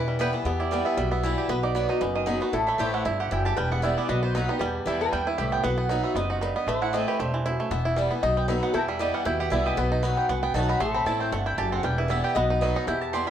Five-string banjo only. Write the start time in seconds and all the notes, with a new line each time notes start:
Already playing: B4
0.08 G3
0.21 B4
0.34 B3
0.46 B3
0.60 E4
0.72 G3
0.86 B3
0.97 G3
1.12 B3
1.24 E4
1.38 G4
1.50 B3
1.63 D#4
1.75 B3
1.89 D#4
2.01 B3
2.15 D#3
2.27 D#4
2.42 B3
2.54 E4
2.68 A3
2.80 G4
2.94 A3
3.06 E4
3.20 G4
3.32 E4
3.46 G4
3.58 G3
3.72 B3
3.83 E4
3.98 B3
4.09 B3
4.23 B3
4.35 D#4
4.49 B3
4.61 G3
4.87 E4
5.01 B3
5.12 G3
5.27 E4
5.38 G4
5.52 B3
5.64 B3
5.78 B3
5.89 D#4
6.04 B3
6.16 B3
6.30 D#4
6.41 D#4
6.56 B3
6.68 A3
6.82 E4
6.94 C4
7.08 G4
7.19 A3
7.34 E3
7.45 E4
7.60 A3
7.71 B3
7.85 E4
7.96 G3
8.10 B3
8.23 D#4
8.37 B3
8.48 D#4
8.63 B3
8.74 E4
8.88 G3
9.00 G4
9.14 G3
9.26 E4
9.40 G4
9.52 E4
9.67 G4
9.78 B3
9.92 D#4
10.03 B3
10.17 B3
10.29 B3
10.43 B3
10.55 D#4
10.70 D#4
10.81 A3
10.95 C4
11.07 E4
11.20 C4
11.33 A3
11.46 E4
11.58 G4
11.72 C4
11.84 G3
11.98 E4
12.10 B3
12.24 G4
12.36 B3
12.50 D#4
12.62 B3
12.76 D#4
12.88 E4
13.14 G4